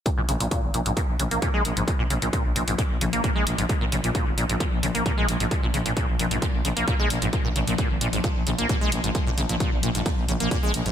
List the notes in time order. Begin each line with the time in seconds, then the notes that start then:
0.06 A#2 F3, kick, closed hi-hat
0.18 A#1 A#2
0.29 A#1 C#3, closed hi-hat
0.40 A#1 A#2, closed hi-hat
0.51 A#2, kick, closed hi-hat
0.63 G#1
0.74 A#1 A#2, closed hi-hat
0.86 A#1 G#2, closed hi-hat
0.97 A#2, kick, closed hi-hat
1.09 A#1
1.20 A#1 C#3, closed hi-hat
1.31 A#1 A#3, closed hi-hat
1.42 A#2, kick, closed hi-hat
1.54 A#1 G#3
1.65 A#1, closed hi-hat
1.77 A#1 G#2, closed hi-hat
1.88 A#2, kick, closed hi-hat
1.99 A#1 A#2
2.10 A#1 C#3, closed hi-hat
2.22 A#1 A#2, closed hi-hat
2.33 A#2, kick, closed hi-hat
2.45 A#1
2.56 A#1 A#2, closed hi-hat
2.67 A#1 G#2, closed hi-hat
2.78 A#2, kick, closed hi-hat
2.90 A#1
3.01 A#1 C#3, closed hi-hat
3.13 A#1 A#3, closed hi-hat
3.24 A#2, kick, closed hi-hat
3.36 A#1 G#3
3.47 A#1, closed hi-hat
3.58 A#1 G#2, closed hi-hat
3.69 A#2, kick, closed hi-hat
3.81 A#1 A#2
3.92 A#1 C#3, closed hi-hat
4.04 A#1 A#2, closed hi-hat
4.15 A#2, kick, closed hi-hat
4.27 G#1
4.37 A#1 A#2, closed hi-hat
4.49 A#1 G#2, closed hi-hat
4.60 A#2, kick, closed hi-hat
4.72 A#1
4.83 A#1 C#3, closed hi-hat
4.95 A#1 A#3, closed hi-hat
5.06 A#2, kick, closed hi-hat
5.17 A#1 G#3
5.28 A#1, closed hi-hat
5.40 A#1 G#2, closed hi-hat
5.51 A#2, kick, closed hi-hat
5.63 A#1 A#2
5.74 A#1 C#3, closed hi-hat
5.86 A#1 A#2, closed hi-hat
5.97 A#2, kick, closed hi-hat
6.08 A#1
6.19 A#1 A#2, closed hi-hat
6.31 A#1 G#2, closed hi-hat
6.42 A#2, kick, closed hi-hat
6.54 A#1
6.65 A#1 C#3, closed hi-hat
6.77 A#1 A#3, closed hi-hat
6.88 A#2, kick, closed hi-hat
6.99 A#1 G#3
7.10 A#1, closed hi-hat
7.22 A#1 G#2, closed hi-hat
7.33 A#2, kick, closed hi-hat
7.45 A#1 A#2
7.56 A#1 C#3, open hi-hat
7.67 A#1 A#2, closed hi-hat
7.78 A#2, kick, closed hi-hat
7.90 G#1
8.01 A#1 A#2, open hi-hat
8.13 A#1 G#2, closed hi-hat
8.24 A#2, kick, closed hi-hat
8.36 A#1
8.47 A#1 C#3, open hi-hat
8.58 A#1 A#3, closed hi-hat
8.69 A#2, kick, closed hi-hat
8.81 A#1 G#3
8.92 A#1, open hi-hat
9.04 A#1 G#2, closed hi-hat
9.15 A#2, kick, closed hi-hat
9.27 A#1 A#2
9.38 A#1 C#3, open hi-hat
9.49 A#1 A#2, closed hi-hat
9.60 A#2, kick, closed hi-hat
9.72 A#1
9.83 A#1 A#2, open hi-hat
9.95 A#1 G#2, closed hi-hat
10.06 A#2, kick, closed hi-hat
10.18 A#1
10.29 A#1 C#3, open hi-hat
10.40 A#1 A#3, closed hi-hat
10.51 A#2, kick, closed hi-hat
10.63 A#1 G#3
10.74 A#1, open hi-hat
10.86 A#1 G#2, open hi-hat